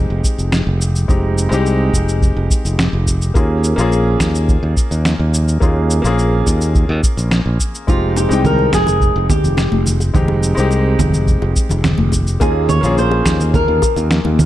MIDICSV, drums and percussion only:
0, 0, Header, 1, 2, 480
1, 0, Start_track
1, 0, Key_signature, -4, "minor"
1, 0, Tempo, 566038
1, 923, Time_signature, 4, 2, 24, 8
1, 12259, End_track
2, 0, Start_track
2, 0, Title_t, "Drums"
2, 203, Note_on_c, 9, 36, 90
2, 207, Note_on_c, 9, 69, 71
2, 287, Note_off_c, 9, 36, 0
2, 292, Note_off_c, 9, 69, 0
2, 329, Note_on_c, 9, 69, 39
2, 414, Note_off_c, 9, 69, 0
2, 444, Note_on_c, 9, 38, 76
2, 448, Note_on_c, 9, 69, 30
2, 529, Note_off_c, 9, 38, 0
2, 532, Note_off_c, 9, 69, 0
2, 688, Note_on_c, 9, 69, 68
2, 773, Note_off_c, 9, 69, 0
2, 810, Note_on_c, 9, 69, 44
2, 895, Note_off_c, 9, 69, 0
2, 922, Note_on_c, 9, 36, 116
2, 929, Note_on_c, 9, 69, 28
2, 1007, Note_off_c, 9, 36, 0
2, 1014, Note_off_c, 9, 69, 0
2, 1169, Note_on_c, 9, 69, 70
2, 1253, Note_off_c, 9, 69, 0
2, 1290, Note_on_c, 9, 69, 42
2, 1375, Note_off_c, 9, 69, 0
2, 1408, Note_on_c, 9, 69, 31
2, 1493, Note_off_c, 9, 69, 0
2, 1642, Note_on_c, 9, 36, 60
2, 1647, Note_on_c, 9, 69, 75
2, 1727, Note_off_c, 9, 36, 0
2, 1732, Note_off_c, 9, 69, 0
2, 1769, Note_on_c, 9, 69, 46
2, 1854, Note_off_c, 9, 69, 0
2, 1882, Note_on_c, 9, 36, 100
2, 1888, Note_on_c, 9, 69, 30
2, 1967, Note_off_c, 9, 36, 0
2, 1973, Note_off_c, 9, 69, 0
2, 2122, Note_on_c, 9, 36, 93
2, 2128, Note_on_c, 9, 69, 73
2, 2206, Note_off_c, 9, 36, 0
2, 2213, Note_off_c, 9, 69, 0
2, 2250, Note_on_c, 9, 69, 41
2, 2335, Note_off_c, 9, 69, 0
2, 2366, Note_on_c, 9, 38, 76
2, 2369, Note_on_c, 9, 69, 32
2, 2450, Note_off_c, 9, 38, 0
2, 2454, Note_off_c, 9, 69, 0
2, 2602, Note_on_c, 9, 36, 57
2, 2607, Note_on_c, 9, 69, 75
2, 2687, Note_off_c, 9, 36, 0
2, 2692, Note_off_c, 9, 69, 0
2, 2728, Note_on_c, 9, 69, 46
2, 2813, Note_off_c, 9, 69, 0
2, 2842, Note_on_c, 9, 36, 125
2, 2846, Note_on_c, 9, 69, 31
2, 2927, Note_off_c, 9, 36, 0
2, 2931, Note_off_c, 9, 69, 0
2, 3086, Note_on_c, 9, 69, 71
2, 3171, Note_off_c, 9, 69, 0
2, 3209, Note_on_c, 9, 69, 46
2, 3294, Note_off_c, 9, 69, 0
2, 3326, Note_on_c, 9, 69, 35
2, 3411, Note_off_c, 9, 69, 0
2, 3563, Note_on_c, 9, 36, 63
2, 3563, Note_on_c, 9, 38, 75
2, 3566, Note_on_c, 9, 69, 78
2, 3647, Note_off_c, 9, 36, 0
2, 3648, Note_off_c, 9, 38, 0
2, 3651, Note_off_c, 9, 69, 0
2, 3689, Note_on_c, 9, 69, 47
2, 3774, Note_off_c, 9, 69, 0
2, 3803, Note_on_c, 9, 36, 114
2, 3807, Note_on_c, 9, 69, 29
2, 3887, Note_off_c, 9, 36, 0
2, 3891, Note_off_c, 9, 69, 0
2, 4042, Note_on_c, 9, 36, 96
2, 4047, Note_on_c, 9, 69, 74
2, 4127, Note_off_c, 9, 36, 0
2, 4132, Note_off_c, 9, 69, 0
2, 4168, Note_on_c, 9, 69, 42
2, 4253, Note_off_c, 9, 69, 0
2, 4284, Note_on_c, 9, 38, 72
2, 4287, Note_on_c, 9, 69, 34
2, 4369, Note_off_c, 9, 38, 0
2, 4372, Note_off_c, 9, 69, 0
2, 4528, Note_on_c, 9, 69, 75
2, 4613, Note_off_c, 9, 69, 0
2, 4648, Note_on_c, 9, 69, 44
2, 4733, Note_off_c, 9, 69, 0
2, 4762, Note_on_c, 9, 36, 110
2, 4766, Note_on_c, 9, 69, 31
2, 4847, Note_off_c, 9, 36, 0
2, 4851, Note_off_c, 9, 69, 0
2, 5006, Note_on_c, 9, 69, 72
2, 5091, Note_off_c, 9, 69, 0
2, 5128, Note_on_c, 9, 69, 44
2, 5213, Note_off_c, 9, 69, 0
2, 5247, Note_on_c, 9, 69, 33
2, 5332, Note_off_c, 9, 69, 0
2, 5483, Note_on_c, 9, 36, 62
2, 5486, Note_on_c, 9, 69, 77
2, 5568, Note_off_c, 9, 36, 0
2, 5571, Note_off_c, 9, 69, 0
2, 5608, Note_on_c, 9, 69, 47
2, 5692, Note_off_c, 9, 69, 0
2, 5723, Note_on_c, 9, 36, 110
2, 5726, Note_on_c, 9, 69, 29
2, 5808, Note_off_c, 9, 36, 0
2, 5811, Note_off_c, 9, 69, 0
2, 5963, Note_on_c, 9, 36, 97
2, 5966, Note_on_c, 9, 69, 73
2, 6048, Note_off_c, 9, 36, 0
2, 6051, Note_off_c, 9, 69, 0
2, 6088, Note_on_c, 9, 69, 44
2, 6173, Note_off_c, 9, 69, 0
2, 6202, Note_on_c, 9, 38, 72
2, 6206, Note_on_c, 9, 69, 34
2, 6287, Note_off_c, 9, 38, 0
2, 6291, Note_off_c, 9, 69, 0
2, 6443, Note_on_c, 9, 36, 58
2, 6446, Note_on_c, 9, 69, 74
2, 6528, Note_off_c, 9, 36, 0
2, 6531, Note_off_c, 9, 69, 0
2, 6569, Note_on_c, 9, 69, 43
2, 6654, Note_off_c, 9, 69, 0
2, 6681, Note_on_c, 9, 60, 46
2, 6683, Note_on_c, 9, 36, 117
2, 6688, Note_on_c, 9, 69, 28
2, 6766, Note_off_c, 9, 60, 0
2, 6768, Note_off_c, 9, 36, 0
2, 6773, Note_off_c, 9, 69, 0
2, 6924, Note_on_c, 9, 60, 72
2, 6927, Note_on_c, 9, 69, 70
2, 7008, Note_off_c, 9, 60, 0
2, 7012, Note_off_c, 9, 69, 0
2, 7049, Note_on_c, 9, 69, 42
2, 7134, Note_off_c, 9, 69, 0
2, 7163, Note_on_c, 9, 64, 77
2, 7167, Note_on_c, 9, 69, 34
2, 7248, Note_off_c, 9, 64, 0
2, 7251, Note_off_c, 9, 69, 0
2, 7283, Note_on_c, 9, 60, 42
2, 7367, Note_off_c, 9, 60, 0
2, 7402, Note_on_c, 9, 38, 70
2, 7403, Note_on_c, 9, 36, 57
2, 7405, Note_on_c, 9, 69, 67
2, 7486, Note_off_c, 9, 38, 0
2, 7488, Note_off_c, 9, 36, 0
2, 7490, Note_off_c, 9, 69, 0
2, 7519, Note_on_c, 9, 60, 71
2, 7520, Note_on_c, 9, 64, 64
2, 7528, Note_on_c, 9, 69, 47
2, 7604, Note_off_c, 9, 60, 0
2, 7604, Note_off_c, 9, 64, 0
2, 7612, Note_off_c, 9, 69, 0
2, 7643, Note_on_c, 9, 36, 110
2, 7647, Note_on_c, 9, 69, 29
2, 7728, Note_off_c, 9, 36, 0
2, 7732, Note_off_c, 9, 69, 0
2, 7882, Note_on_c, 9, 60, 50
2, 7883, Note_on_c, 9, 64, 71
2, 7884, Note_on_c, 9, 36, 99
2, 7887, Note_on_c, 9, 69, 73
2, 7967, Note_off_c, 9, 60, 0
2, 7968, Note_off_c, 9, 36, 0
2, 7968, Note_off_c, 9, 64, 0
2, 7971, Note_off_c, 9, 69, 0
2, 8007, Note_on_c, 9, 64, 65
2, 8008, Note_on_c, 9, 69, 42
2, 8092, Note_off_c, 9, 64, 0
2, 8093, Note_off_c, 9, 69, 0
2, 8117, Note_on_c, 9, 60, 71
2, 8122, Note_on_c, 9, 38, 71
2, 8126, Note_on_c, 9, 69, 31
2, 8201, Note_off_c, 9, 60, 0
2, 8207, Note_off_c, 9, 38, 0
2, 8210, Note_off_c, 9, 69, 0
2, 8241, Note_on_c, 9, 63, 85
2, 8326, Note_off_c, 9, 63, 0
2, 8360, Note_on_c, 9, 64, 72
2, 8366, Note_on_c, 9, 69, 78
2, 8444, Note_off_c, 9, 64, 0
2, 8451, Note_off_c, 9, 69, 0
2, 8482, Note_on_c, 9, 60, 44
2, 8487, Note_on_c, 9, 69, 42
2, 8567, Note_off_c, 9, 60, 0
2, 8571, Note_off_c, 9, 69, 0
2, 8603, Note_on_c, 9, 36, 112
2, 8603, Note_on_c, 9, 64, 72
2, 8607, Note_on_c, 9, 69, 30
2, 8688, Note_off_c, 9, 36, 0
2, 8688, Note_off_c, 9, 64, 0
2, 8691, Note_off_c, 9, 69, 0
2, 8719, Note_on_c, 9, 60, 70
2, 8804, Note_off_c, 9, 60, 0
2, 8845, Note_on_c, 9, 69, 68
2, 8929, Note_off_c, 9, 69, 0
2, 8966, Note_on_c, 9, 69, 42
2, 9051, Note_off_c, 9, 69, 0
2, 9080, Note_on_c, 9, 60, 50
2, 9085, Note_on_c, 9, 69, 32
2, 9165, Note_off_c, 9, 60, 0
2, 9170, Note_off_c, 9, 69, 0
2, 9321, Note_on_c, 9, 64, 73
2, 9322, Note_on_c, 9, 36, 60
2, 9324, Note_on_c, 9, 60, 72
2, 9324, Note_on_c, 9, 69, 65
2, 9405, Note_off_c, 9, 64, 0
2, 9407, Note_off_c, 9, 36, 0
2, 9408, Note_off_c, 9, 60, 0
2, 9409, Note_off_c, 9, 69, 0
2, 9443, Note_on_c, 9, 64, 57
2, 9446, Note_on_c, 9, 69, 43
2, 9528, Note_off_c, 9, 64, 0
2, 9531, Note_off_c, 9, 69, 0
2, 9562, Note_on_c, 9, 36, 105
2, 9563, Note_on_c, 9, 69, 30
2, 9647, Note_off_c, 9, 36, 0
2, 9648, Note_off_c, 9, 69, 0
2, 9684, Note_on_c, 9, 60, 50
2, 9769, Note_off_c, 9, 60, 0
2, 9802, Note_on_c, 9, 36, 86
2, 9804, Note_on_c, 9, 69, 70
2, 9886, Note_off_c, 9, 36, 0
2, 9889, Note_off_c, 9, 69, 0
2, 9916, Note_on_c, 9, 64, 67
2, 9926, Note_on_c, 9, 69, 40
2, 9930, Note_on_c, 9, 60, 74
2, 10001, Note_off_c, 9, 64, 0
2, 10010, Note_off_c, 9, 69, 0
2, 10015, Note_off_c, 9, 60, 0
2, 10040, Note_on_c, 9, 38, 70
2, 10040, Note_on_c, 9, 64, 77
2, 10044, Note_on_c, 9, 69, 31
2, 10125, Note_off_c, 9, 38, 0
2, 10125, Note_off_c, 9, 64, 0
2, 10129, Note_off_c, 9, 69, 0
2, 10157, Note_on_c, 9, 63, 82
2, 10241, Note_off_c, 9, 63, 0
2, 10276, Note_on_c, 9, 60, 53
2, 10278, Note_on_c, 9, 64, 69
2, 10281, Note_on_c, 9, 36, 54
2, 10284, Note_on_c, 9, 69, 72
2, 10361, Note_off_c, 9, 60, 0
2, 10363, Note_off_c, 9, 64, 0
2, 10366, Note_off_c, 9, 36, 0
2, 10369, Note_off_c, 9, 69, 0
2, 10406, Note_on_c, 9, 69, 43
2, 10491, Note_off_c, 9, 69, 0
2, 10521, Note_on_c, 9, 36, 110
2, 10524, Note_on_c, 9, 69, 30
2, 10525, Note_on_c, 9, 60, 74
2, 10606, Note_off_c, 9, 36, 0
2, 10608, Note_off_c, 9, 69, 0
2, 10609, Note_off_c, 9, 60, 0
2, 10761, Note_on_c, 9, 64, 70
2, 10764, Note_on_c, 9, 69, 68
2, 10845, Note_off_c, 9, 64, 0
2, 10849, Note_off_c, 9, 69, 0
2, 10880, Note_on_c, 9, 60, 51
2, 10885, Note_on_c, 9, 69, 41
2, 10965, Note_off_c, 9, 60, 0
2, 10970, Note_off_c, 9, 69, 0
2, 11006, Note_on_c, 9, 69, 32
2, 11091, Note_off_c, 9, 69, 0
2, 11121, Note_on_c, 9, 60, 82
2, 11205, Note_off_c, 9, 60, 0
2, 11241, Note_on_c, 9, 36, 56
2, 11241, Note_on_c, 9, 38, 76
2, 11244, Note_on_c, 9, 69, 69
2, 11326, Note_off_c, 9, 36, 0
2, 11326, Note_off_c, 9, 38, 0
2, 11329, Note_off_c, 9, 69, 0
2, 11367, Note_on_c, 9, 69, 42
2, 11368, Note_on_c, 9, 64, 65
2, 11452, Note_off_c, 9, 69, 0
2, 11453, Note_off_c, 9, 64, 0
2, 11481, Note_on_c, 9, 36, 97
2, 11482, Note_on_c, 9, 64, 73
2, 11485, Note_on_c, 9, 60, 49
2, 11485, Note_on_c, 9, 69, 29
2, 11566, Note_off_c, 9, 36, 0
2, 11567, Note_off_c, 9, 64, 0
2, 11569, Note_off_c, 9, 60, 0
2, 11570, Note_off_c, 9, 69, 0
2, 11719, Note_on_c, 9, 60, 76
2, 11721, Note_on_c, 9, 36, 88
2, 11725, Note_on_c, 9, 69, 71
2, 11804, Note_off_c, 9, 60, 0
2, 11806, Note_off_c, 9, 36, 0
2, 11810, Note_off_c, 9, 69, 0
2, 11842, Note_on_c, 9, 64, 73
2, 11847, Note_on_c, 9, 69, 40
2, 11927, Note_off_c, 9, 64, 0
2, 11931, Note_off_c, 9, 69, 0
2, 11962, Note_on_c, 9, 38, 73
2, 11966, Note_on_c, 9, 69, 30
2, 12047, Note_off_c, 9, 38, 0
2, 12051, Note_off_c, 9, 69, 0
2, 12081, Note_on_c, 9, 63, 86
2, 12083, Note_on_c, 9, 60, 50
2, 12166, Note_off_c, 9, 63, 0
2, 12168, Note_off_c, 9, 60, 0
2, 12203, Note_on_c, 9, 64, 80
2, 12204, Note_off_c, 9, 64, 0
2, 12204, Note_on_c, 9, 64, 83
2, 12207, Note_on_c, 9, 69, 71
2, 12259, Note_off_c, 9, 64, 0
2, 12259, Note_off_c, 9, 69, 0
2, 12259, End_track
0, 0, End_of_file